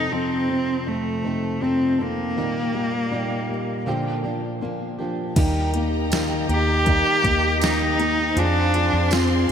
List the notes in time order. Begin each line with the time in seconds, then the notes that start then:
Already playing: F2 C3 C4 D#4 A4
0.10 F2 F3 C4 D#4 A4
0.49 C3
0.87 F2 A3
1.23 C3 C4 D#4 A4
1.61 F2 F3 C4 D#4 A4
1.98 C3 A#3 C4 D#4 A4
2.36 A#2 D#3 G3 A#3 D#4 G4
2.73 G3 A#3 D#4 G4
3.11 A#2 G3 A#3 D#4 G4
3.49 G3
3.86 A#2 D3 F3 A#3 D4 G4
4.24 F3 A#3 D4 G4
4.61 A#2 F3 A#3 D4 G4
4.99 F3 A#3 D4 G4
5.36 D#2 D#3 G3 A#3 D#4 G4 A#4 D#5 A#5, kick, closed hi-hat, crash
5.74 A#3 D#4 G4, closed hi-hat
6.10 D#3 G3 A#3 D#4 G4, snare, closed hi-hat, tambourine
6.48 D#2 A#3 D#4 G4, closed hi-hat
6.86 D#3 G3 A#3 D#4 G4, kick, closed hi-hat
7.24 D#2 A#3, kick, closed hi-hat
7.60 D#3 G3 A#3 D#4 G4, snare, closed hi-hat, tambourine
7.98 A#3 D#4 G4, closed hi-hat
8.36 F2 F3 C4 D4 F4 G#4 C5 F5 C6, closed hi-hat
8.74 F3 C4 F4 G#4, closed hi-hat
8.93 F2
9.11 F3 C4 F4 G#4, snare, closed hi-hat, tambourine
9.49 G#4